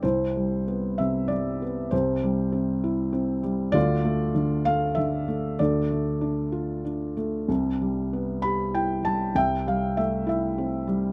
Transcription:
<<
  \new Staff \with { instrumentName = "Felt piano" } { \time 3/4 \key c \major \tempo 4 = 98 << { c''4 r8 e''8 d''4 | c''2~ c''8 r8 | d''4 r8 f''8 e''4 | d''2~ d''8 r8 |
r4. b''8 g''8 a''8 | g''8 f''8 e''8 e''4 r8 | } \\ { e'4. r4. | g'2~ g'8 r8 | f'4. r4. | a'2~ a'8 r8 |
r2. | e''4. r4. | } >> }
  \new Staff \with { instrumentName = "Felt piano" } { \clef bass \time 3/4 \key c \major <c, c>8 g8 b8 c8 g8 b8 | <c, c>8 g8 c'8 e'8 c'8 g8 | <d, d>8 a8 d8 a8 d8 a8 | <d, d>8 a8 d'8 f'8 d'8 a8 |
<c, c>8 g8 b8 g'8 e'8 g8 | <c, c>8 g8 a8 e'8 c'8 g8 | }
>>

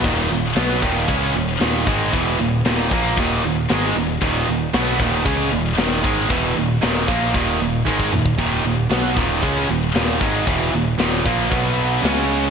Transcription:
<<
  \new Staff \with { instrumentName = "Distorted electric guitar" } { \clef bass \time 4/4 \key ees \phrygian \tempo 4 = 115 <ees, bes, ees>8 <ees, bes,>8 <ces ges ces'>8 <ees, bes, ees>8 <des aes des'>8 <ees, bes,>8 <ees, bes, ees>8 <aes, ees aes>8 | <fes, ces fes>8 <ees, bes,>8 <ees, bes, ees>8 <bes, f bes>8 <ees, bes, ees>8 <ees, bes,>8 <aes, ees aes>8 <ees, bes,>8 | <ees, bes, ees>8 <ees, bes,>8 <ces ges ces'>8 <ees, bes, ees>8 <des aes des'>8 <ees, bes,>8 <ees, bes, ees>8 <aes, ees aes>8 | <fes, ces fes>8 <ees, bes,>8 <ees, bes, ees>8 <bes, f bes>8 <ees, bes, ees>8 <ees, bes,>8 <aes, ees aes>8 <ees, bes,>8 |
<ees, bes, ees>8 <ees, bes,>8 <ces ges ces'>8 <ees, bes, ees>8 <des aes des'>8 <ees, bes,>8 <ees, bes, ees>8 <aes, ees aes>8 | <fes, ces fes>8 <ees, bes,>8 <ees, bes, ees>8 <bes, f bes>8 <b, fis b>4 <des aes des'>4 | }
  \new Staff \with { instrumentName = "Distorted electric guitar" } { \clef bass \time 4/4 \key ees \phrygian <ees, bes, ees>8 <ees, bes,>8 <ces ges ces'>8 <ees, bes, ees>8 <des aes des'>8 <ees, bes,>8 <ees, bes, ees>8 <aes, ees aes>8 | <fes, ces fes>8 <ees, bes,>8 <ees, bes, ees>8 <bes, f bes>8 <ees, bes, ees>8 <ees, bes,>8 <aes, ees aes>8 <ees, bes,>8 | <ees, bes, ees>8 <ees, bes,>8 <ces ges ces'>8 <ees, bes, ees>8 <des aes des'>8 <ees, bes,>8 <ees, bes, ees>8 <aes, ees aes>8 | <fes, ces fes>8 <ees, bes,>8 <ees, bes, ees>8 <bes, f bes>8 <ees, bes, ees>8 <ees, bes,>8 <aes, ees aes>8 <ees, bes,>8 |
<ees, bes, ees>8 <ees, bes,>8 <ces ges ces'>8 <ees, bes, ees>8 <des aes des'>8 <ees, bes,>8 <ees, bes, ees>8 <aes, ees aes>8 | <fes, ces fes>8 <ees, bes,>8 <ees, bes, ees>8 <bes, f bes>8 <b, fis b>4 <des aes des'>4 | }
  \new Staff \with { instrumentName = "Picked electric bass" } { \clef bass \time 4/4 \key ees \phrygian ees,,8 ees,,8 ces,8 ees,,8 des,8 ees,,8 ees,,8 aes,,8 | fes,,8 ees,,8 ees,,8 bes,,8 ees,,8 ees,,8 aes,,8 ees,,8 | ees,,8 ees,,8 ces,8 ees,,8 des,8 ees,,8 ees,,8 aes,,8 | fes,,8 ees,,8 ees,,8 bes,,8 ees,,8 ees,,8 aes,,8 ees,,8 |
ees,,8 ees,,8 ces,8 ees,,8 des,8 ees,,8 ees,,8 aes,,8 | fes,,8 ees,,8 ees,,8 bes,,8 b,,4 des,4 | }
  \new DrumStaff \with { instrumentName = "Drums" } \drummode { \time 4/4 <cymc bd>4 <rb sn>8 bd8 <bd rb>4 <rb sn>8 bd8 | <bd rb>4 <rb sn>8 bd8 <bd rb>4 <rb sn>4 | <bd rb>4 <rb sn>8 bd8 <bd rb>4 <rb sn>8 bd8 | <bd rb>4 <rb sn>8 bd8 <bd rb>4 bd16 bd16 toml16 bd16 |
<bd rb>4 <rb sn>8 bd8 <bd rb>4 <rb sn>8 bd8 | <bd rb>4 <rb sn>8 bd8 <bd rb>4 <rb sn>4 | }
>>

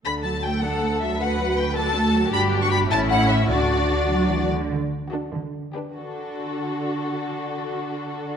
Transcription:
<<
  \new Staff \with { instrumentName = "Violin section" } { \time 6/8 \key d \major \tempo 4. = 99 b''8 a''8 g''8 fis''4 e''8 | fis''4 g''8 a''4. | b''8. cis'''16 b''8 a''8 fis''8 e''8 | d''2~ d''8 r8 |
r4 a'8 r4 b'8 | a'2.~ | a'2. | }
  \new Staff \with { instrumentName = "Violin section" } { \time 6/8 \key d \major r4. a'4. | b'4. a'4. | g'4. e'4. | fis'2~ fis'16 r8. |
r4 fis'8 r4 g'8 | fis'2.~ | fis'2. | }
  \new Staff \with { instrumentName = "Viola section" } { \time 6/8 \key d \major << { a'2. | fis'2. | fis'4. e'4. | fis'2~ fis'8 r8 |
r2. | r2. | r2. | } \\ { d8 fis8 a8 d'8 a8 fis8 | d8 fis8 a8 d'8 a8 fis8 | d'4. cis'4. | d'2~ d'8 r8 |
r4 d'8 r4 d'8 | d'2.~ | d'2. | } >> }
  \new Staff \with { instrumentName = "Cello section" } { \clef bass \time 6/8 \key d \major d,2.~ | d,2. | g,4. a,4. | d4. fis8 e8 d8 |
d4. d4. | d2.~ | d2. | }
  \new Staff \with { instrumentName = "Double bass section" } { \clef bass \time 6/8 \key d \major d,2.~ | d,2. | g,,4. a,,4. | d,2~ d,8 r8 |
r2. | r2. | r2. | }
>>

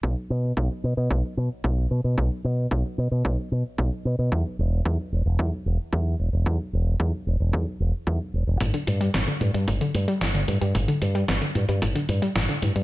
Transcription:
<<
  \new Staff \with { instrumentName = "Synth arpeggio sound" } { \clef bass \time 4/4 \key g \lydian \tempo 4 = 112 r1 | r1 | r1 | r1 |
a,16 d16 a,16 g16 a,16 d16 a,16 g16 a,16 d16 a,16 g16 a,16 d16 a,16 g16 | a,16 d16 a,16 g16 a,16 d16 a,16 g16 a,16 d16 a,16 g16 a,16 d16 a,16 g16 | }
  \new Staff \with { instrumentName = "Fingered electric bass" } { \clef bass \time 4/4 \key g \lydian b,,16 r16 b,8 b,,16 r16 b,16 b,16 b,,16 r16 b,16 r16 b,,8 b,16 b,16 | b,,16 r16 b,8 b,,16 r16 b,16 b,16 b,,16 r16 b,16 r16 b,,16 r16 b,16 b,16 | e,16 r16 e,,8 e,16 r16 e,,16 e,,16 e,16 r16 e,,16 r16 e,8 e,,16 e,,16 | e,16 r16 e,,8 e,16 r16 e,,16 e,,16 e,16 r16 e,,16 r16 e,16 r16 e,,16 e,,16 |
g,,16 r16 g,8 g,,16 r16 g,16 g,16 g,,16 r16 g,16 r16 g,,8 g,16 g,16 | g,,16 r16 g,8 g,,16 r16 g,16 g,16 g,,16 r16 g,16 r16 g,,16 r16 g,16 g,16 | }
  \new DrumStaff \with { instrumentName = "Drums" } \drummode { \time 4/4 bd4 bd4 bd4 bd4 | bd4 bd4 bd4 bd4 | bd4 bd4 bd4 bd4 | bd4 bd4 bd4 bd4 |
<hh bd>16 hh16 hh16 hh16 <hh bd sn>16 hh16 hh16 hh16 <hh bd>16 hh16 hh16 hh16 <hh bd sn>16 hh16 hh16 hh16 | <hh bd>16 hh16 hh16 hh16 <hh bd sn>16 hh16 hh16 hh16 <hh bd>16 hh16 hh16 hh16 <hh bd sn>16 hh16 hh16 hh16 | }
>>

